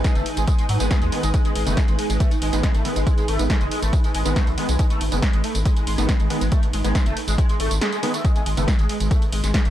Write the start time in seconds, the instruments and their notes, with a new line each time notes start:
Already playing: ambient pad D#4 B4 G#5
0.04 analog synth lead G#3, kick, snare, closed hi-hat, ride, tambourine
0.15 analog synth bass F#1, analog synth lead A3, closed hi-hat, tambourine
0.26 open hi-hat, ride
0.37 analog synth bass G#1, analog synth lead G#3, closed hi-hat, tambourine
0.48 analog synth lead G#3, kick, closed hi-hat, ride, tambourine
0.59 analog synth lead G#3, closed hi-hat, tambourine
0.69 analog synth bass G#2, analog synth lead F#3, open hi-hat, ride
0.80 analog synth bass G#1, synth stab D#3 G#3 B3, analog synth lead G#3, closed hi-hat, tambourine
0.91 analog synth lead G#3, kick, snare, closed hi-hat, ride, tambourine
1.02 analog synth bass D#2, analog synth lead G#3, closed hi-hat, tambourine
1.12 synth stab D#3 G#3 B3, open hi-hat, ride
1.23 analog synth bass G#1, analog synth lead G#3, closed hi-hat, tambourine
1.34 analog synth lead G#3, kick, closed hi-hat, ride, tambourine
1.45 analog synth lead G#3, closed hi-hat, tambourine
1.55 analog synth bass G#1, analog synth lead G#3, open hi-hat, ride
1.67 analog synth bass F#1, synth stab D#3 G#3 B3, analog synth lead A3, closed hi-hat, tambourine
1.77 kick, snare, closed hi-hat, ride, tambourine
1.88 analog synth bass G#1, analog synth lead G#3, closed hi-hat, tambourine
1.98 analog synth lead G#3, ambient pad B5, open hi-hat, ride
2.10 analog synth bass G#1, analog synth lead G#3, closed hi-hat, tambourine
2.20 analog synth lead A3, kick, closed hi-hat, ride, tambourine
2.31 closed hi-hat, tambourine
2.42 analog synth bass G#1, analog synth lead G#3, open hi-hat, ride
2.53 analog synth bass G#1, synth stab D#3 G#3 B3, analog synth lead G#3, snare, closed hi-hat, tambourine
2.63 analog synth lead G#3, kick, snare, closed hi-hat, ride, tambourine
2.74 analog synth bass G#1, analog synth lead A3, closed hi-hat, tambourine
2.85 synth stab D#3 G#3 B3, open hi-hat, ride
2.96 analog synth bass G#1, analog synth lead G#3, closed hi-hat, tambourine
3.07 analog synth lead G#3, kick, closed hi-hat, ride, tambourine
3.18 analog synth lead G#3, closed hi-hat, tambourine
3.28 analog synth bass G#1, analog synth lead A3, open hi-hat, ride
3.39 analog synth bass G#1, synth stab D#3 G#3 B3, closed hi-hat, tambourine
3.50 analog synth lead G#3, kick, snare, closed hi-hat, ride, tambourine
3.61 analog synth bass F#1, analog synth lead G#3, closed hi-hat, tambourine
3.71 analog synth lead G#3, open hi-hat, ride
3.82 analog synth bass G#1, analog synth lead A3, closed hi-hat, tambourine
3.93 kick, closed hi-hat, ride, tambourine
4.04 analog synth lead G#3, closed hi-hat, tambourine
4.14 analog synth bass G#1, analog synth lead G#3, open hi-hat, ride
4.25 analog synth bass G#1, synth stab D#3 G#3 B3, analog synth lead G#3, closed hi-hat, tambourine
4.36 analog synth lead A3, kick, snare, closed hi-hat, ride, tambourine
4.47 analog synth bass B1, closed hi-hat, tambourine
4.58 synth stab D#3 G#3 B3, analog synth lead G#3, open hi-hat, ride
4.69 analog synth bass B1, analog synth lead G#3, closed hi-hat, tambourine
4.79 analog synth lead G#3, kick, closed hi-hat, ride, tambourine
4.90 analog synth lead A3, closed hi-hat, tambourine
5.01 analog synth bass G#1, open hi-hat, ride
5.12 analog synth bass F#1, synth stab D#3 G#3 B3, analog synth lead G#3, closed hi-hat, tambourine
5.22 analog synth lead G#3, kick, snare, closed hi-hat, ride, tambourine
5.33 analog synth bass G#1, analog synth lead G#3, closed hi-hat, tambourine
5.44 analog synth lead A3, open hi-hat, ride
5.55 analog synth bass G#1, closed hi-hat, tambourine
5.65 analog synth lead G#3, kick, closed hi-hat, ride, tambourine
5.77 analog synth lead G#3, closed hi-hat, tambourine
5.87 analog synth bass G#1, analog synth lead G#3, open hi-hat, ride
5.98 analog synth bass G#1, synth stab D#3 G#3 B3, analog synth lead A3, snare, closed hi-hat, tambourine
6.09 kick, snare, closed hi-hat, ride, tambourine
6.20 analog synth bass G#1, analog synth lead G#3, closed hi-hat, tambourine
6.30 synth stab D#3 G#3 B3, analog synth lead G#3, open hi-hat, ride
6.41 analog synth bass G#1, analog synth lead G#3, closed hi-hat, tambourine
6.52 analog synth lead A3, kick, closed hi-hat, ride, tambourine
6.63 closed hi-hat, tambourine
6.73 analog synth bass G#1, analog synth lead G#3, open hi-hat, ride
6.84 analog synth bass G#1, synth stab D#3 G#3 B3, analog synth lead G#3, closed hi-hat, tambourine
6.95 analog synth lead G#3, kick, snare, closed hi-hat, ride, tambourine
7.06 analog synth bass F#1, analog synth lead A3, closed hi-hat, tambourine
7.17 open hi-hat, ride
7.28 analog synth bass G#1, analog synth lead G#3, closed hi-hat, tambourine
7.38 analog synth lead G#3, kick, closed hi-hat, ride, tambourine
7.49 analog synth lead G#3, closed hi-hat, tambourine
7.60 analog synth bass G#1, analog synth lead A3, open hi-hat, ride
7.71 analog synth bass G#1, closed hi-hat, tambourine
7.81 analog synth lead G#3, snare, closed hi-hat, ride, tambourine
7.92 analog synth lead G#3, closed hi-hat, tambourine
8.03 synth stab D#3 G#3 B3, analog synth lead G#3, open hi-hat, ride
8.14 analog synth lead A3, closed hi-hat, tambourine
8.24 analog synth lead G#3, kick, closed hi-hat, ride, tambourine
8.36 analog synth lead G#3, closed hi-hat, tambourine
8.46 analog synth bass G#1, analog synth lead G#3, open hi-hat, ride
8.57 analog synth bass F#1, synth stab D#3 G#3 B3, analog synth lead A3, closed hi-hat, tambourine
8.68 kick, snare, closed hi-hat, ride, tambourine
8.79 analog synth bass G#1, analog synth lead G#3, closed hi-hat, tambourine
8.89 analog synth lead G#3, open hi-hat, ride
9.00 analog synth bass G#1, analog synth lead G#3, closed hi-hat, tambourine
9.11 analog synth lead A3, kick, closed hi-hat, ride, tambourine
9.22 closed hi-hat, tambourine
9.32 analog synth bass G#1, analog synth lead G#3, open hi-hat, ride
9.43 analog synth bass G#1, analog synth lead G#3, snare, closed hi-hat, tambourine
9.54 analog synth lead G#3, kick, snare, closed hi-hat, ride, tambourine
9.65 analog synth bass G#1, analog synth lead A3, closed hi-hat, tambourine